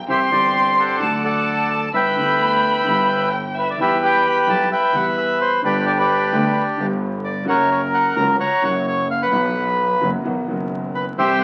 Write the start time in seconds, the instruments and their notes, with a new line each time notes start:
0.07 double bass C2, grand piano C2 C3 E3 G3 C4 G4, bandoneon G4 C5 E5, violin C6
0.30 double bass G1, grand piano G1 G2 E3 G3 C4, bandoneon G4 D5
0.34 grand piano G4
0.79 bandoneon A4 D5 F#5
0.99 double bass D2, grand piano D2 D3 F#3 A3, violin A5
1.03 grand piano F#4
1.24 bandoneon A4 D5 F#5
1.70 bandoneon A5
1.92 double bass G1, grand piano G1 G2 D3 G3 B3 E4, bandoneon B4 E5, violin B5
1.96 bandoneon G5
2.15 double bass D2, grand piano D2 D3 G3 B3
2.20 grand piano E4
2.84 double bass G1, grand piano G1 G2 D3 G3 B3
2.88 grand piano E4
3.31 violin G5
3.55 bandoneon B4, violin E5
3.70 bandoneon D5
3.78 double bass E2, grand piano E2 E3 G3 B3 G4, bandoneon G4 B4
3.82 bandoneon E5
4.05 bandoneon G5
4.27 bandoneon B5
4.47 grand piano B1 B2 E3 G3 B3 G4, double bass B1, bandoneon A5
4.72 bandoneon B4 E5 G5
4.94 double bass E2, grand piano E2 E3 G3 B3 G4, bandoneon F#5
5.18 bandoneon E5
5.41 bandoneon C5
5.62 double bass G1, grand piano G1 G2 D3 G3 B3, bandoneon D4 G4 B4
5.66 grand piano G4
5.87 bandoneon D5
5.98 bandoneon D4 G4 B4
6.32 double bass D2, grand piano D2 D3 G3 B3 G4
6.77 double bass G1, grand piano G1 G2 D3 G3 B3
6.82 grand piano G4
7.24 bandoneon D5
7.45 double bass F#1, grand piano F#2 C#3 F#3 A#3 F#4, bandoneon F#5
7.49 bandoneon A#4 C#5
7.71 bandoneon C#5
7.94 bandoneon F#5
8.16 double bass C#2, grand piano C#2 C#3 F#3 A#3 F#4, bandoneon A#5
8.40 bandoneon C#5 F#5 A#5
8.61 double bass F#1, grand piano F#2 C#3 F#3 A#3, bandoneon F#5
8.66 grand piano F#4
8.88 bandoneon C#5
9.11 bandoneon F5
9.22 bandoneon B4 F#5
9.30 double bass B1, grand piano B1 B2 E3 F#3 B3
9.35 grand piano F#4
10.01 grand piano F#1 F#2 E3 F#3 B3 F#4, double bass F#1
10.24 double bass B1, grand piano B1 B2 D#3 F#3 B3 F#4
10.47 double bass F#1, grand piano F#1 F#2 D#3 F#3 B3 F#4
10.95 bandoneon B4
11.18 double bass C2, grand piano C2 C3 E3 G3 C4 G4, bandoneon G4 C5 E5, violin G5